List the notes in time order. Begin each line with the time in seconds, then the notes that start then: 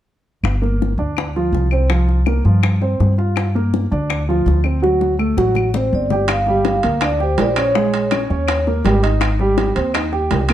0.43 G1, high bongo, claves
0.62 A#3 A#4, high bongo
0.82 high bongo
0.98 D2 D4 D5
1.17 high bongo, claves
1.36 F3 F4, high bongo
1.52 C2, high bongo, low bongo
1.71 C4 C5, high bongo, claves
1.90 F3 F4, high bongo
2.09 high bongo
2.26 A#3 A#4, high bongo, claves
2.45 G2 F3 F4
2.63 high bongo, claves
2.82 C4 C5, high bongo
3.00 G2, high bongo, low bongo
3.18 F4 F5, high bongo
3.36 high bongo, claves
3.55 A#3 A#4, high bongo
3.74 high bongo
3.92 D2 D4 D5
4.10 high bongo, claves
4.29 F3 F4, high bongo
4.46 D2, high bongo, low bongo
4.64 C4 C5, high bongo, claves
4.82 F#3 F#4, high bongo
5.01 high bongo
5.19 A3 A4, claves
5.37 A1 F#3 F#4, high bongo
5.55 low bongo, claves
5.74 C4 C5, low bongo
5.93 G1 D5
6.10 G4 G5, low bongo
6.28 high bongo, high timbale, claves
6.32 F5
6.47 G3 G4, high bongo
6.65 F5, high bongo, high timbale, low timbale
6.83 D2 A#3 A#4, high timbale
7.01 D4 D5, high bongo, high timbale, claves
7.20 G4 C5 G5, high bongo
7.38 A#1 D5, high bongo, low bongo, high timbale, low timbale
7.50 C5
7.56 C#4 C#5, high bongo, high timbale, claves
7.75 G#3 G#4, high bongo
7.94 high bongo, high timbale
8.11 C#4 C#5, high bongo, high timbale, low timbale, claves
8.30 D#2 C#4 C#5
8.48 high bongo, high timbale, claves
8.67 A#3 A#4, high bongo
8.85 G#1 G3 G4, high bongo, low bongo, high timbale, low timbale
9.03 D#4 D#5, high bongo, high timbale
9.21 high bongo, high timbale, claves
9.39 G3 G4, high bongo
9.58 high bongo, high timbale, low timbale
9.75 D#2 C4 C5, high timbale
9.94 D#4 D#5, high bongo, high timbale, claves
10.13 G4 G5, high bongo
10.31 C2, high bongo, low bongo, high timbale, low timbale
10.49 A#3, high bongo, high timbale, claves